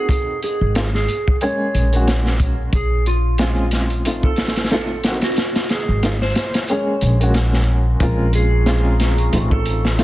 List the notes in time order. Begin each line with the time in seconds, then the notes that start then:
Already playing: A#3 C4 D#4 F#4 G#4
0.09 kick, closed hi-hat
0.43 G#4, closed hi-hat
0.61 G#1
0.75 A#3 C4 D#4 F4, snare, closed hi-hat
0.94 G#4, snare
1.08 closed hi-hat
1.28 kick
1.41 G#3 A#3 C#4 G#4 C#5, closed hi-hat
1.75 A#1, closed hi-hat
1.92 G#3 A#3 C#4 F#4, closed hi-hat
2.08 snare, closed hi-hat
2.26 snare
2.40 kick, closed hi-hat
2.73 A#1 G#4, kick, closed hi-hat
3.06 F4, closed hi-hat
3.38 G#3 C4 C#4 F4, snare, closed hi-hat
3.71 snare, closed hi-hat
3.90 closed hi-hat
4.05 A1 A3 C4 D#4 F4, closed hi-hat
4.23 A4, kick
4.36 snare, closed hi-hat
4.47 snare, closed hi-hat
4.56 snare, closed hi-hat
4.64 snare, closed hi-hat
4.71 A3 C4 D#4 F4 A4, snare, closed hi-hat
5.04 A#3 C4 D#4 F#4, snare, closed hi-hat
5.22 F#4, snare, closed hi-hat
5.36 snare, closed hi-hat
5.56 snare, closed hi-hat
5.69 G#4, snare, closed hi-hat
5.88 G#1
6.03 A#3 C4 D#4 F4, snare, closed hi-hat
6.21 C5, snare
6.35 snare, closed hi-hat
6.54 snare, closed hi-hat
6.68 G#3 A#3 C#4 G#4 C#5, closed hi-hat
7.01 A#1, closed hi-hat
7.20 G#3 A#3 C#4 F#4, closed hi-hat
7.34 snare, closed hi-hat
7.53 snare
8.00 A#1 G#3 C4 C#4 F4 G#4 A#4 A#5 C#6, kick, closed hi-hat
8.33 G#4, closed hi-hat
8.66 G#3 C4 C#4 F4, snare, closed hi-hat
9.00 snare, closed hi-hat
9.18 closed hi-hat
9.32 A1 A3 C4 D#4 F4 A4 F5 D#6, closed hi-hat
9.51 A4, kick
9.66 closed hi-hat
9.85 snare
9.98 A3 C4 D#4 F4 A4, snare, closed hi-hat